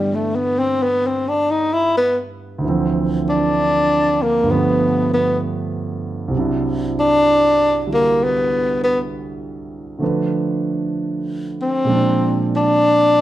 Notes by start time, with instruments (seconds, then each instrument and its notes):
Already playing: grand piano G2 D3 E3 A3 B3, tenor saxophone G3
0.14 tenor saxophone A3
0.35 tenor saxophone B3
0.59 tenor saxophone C4
0.83 tenor saxophone B3
1.07 tenor saxophone C4
1.29 tenor saxophone D4
1.51 tenor saxophone D#4
1.73 tenor saxophone E4
1.98 tenor saxophone B3
2.58 grand piano D2 D3
2.64 grand piano E3 F3
2.69 grand piano C4
3.29 tenor saxophone D4
4.22 tenor saxophone A#3
4.43 grand piano G2 D3
4.48 grand piano F3 A3, tenor saxophone B3
4.54 grand piano B3
5.14 tenor saxophone B3
6.28 grand piano C2 C3
6.33 grand piano F#3
6.37 grand piano D4 E4
7.00 tenor saxophone D4
7.87 grand piano D3 G3 E4 F#4
7.94 tenor saxophone A#3
8.24 tenor saxophone B3
8.84 tenor saxophone B3
9.99 grand piano D3 F3 A3 D4
10.04 grand piano B4
11.62 tenor saxophone C4
11.85 grand piano A#2 F3 G#3 C4
11.90 grand piano D4
12.56 tenor saxophone D4